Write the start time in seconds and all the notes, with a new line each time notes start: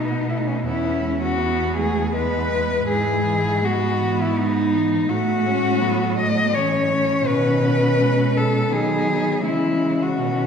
Already playing: B2 B3 D#4
0.27 A3 E4
0.38 D#4
0.47 C#4
0.56 D#4
0.64 E2 B3 C#4 E4
1.01 G#3
1.22 F#4
1.37 B3
1.75 G#3 A3 G#4
2.12 G#3 B3 B4
2.49 G#3
2.87 G#2 E3 G#3 G#4
3.24 E3
3.61 G#3 B3 F#4
3.98 E3
4.21 E4
4.36 G#3 D#4
4.73 E3
5.09 A2 A3 F#4
5.44 G#3 C#4
5.80 F#3 B3
6.18 A3 D#5
6.54 E3 C#4 C#5
7.26 B2 D#3 B4
8.00 G#3
8.37 A4
8.71 D#3 F#3 B3 G#4
9.44 C#3 E3 G#3 E4
10.03 F#4
10.19 B2 D#3 C#4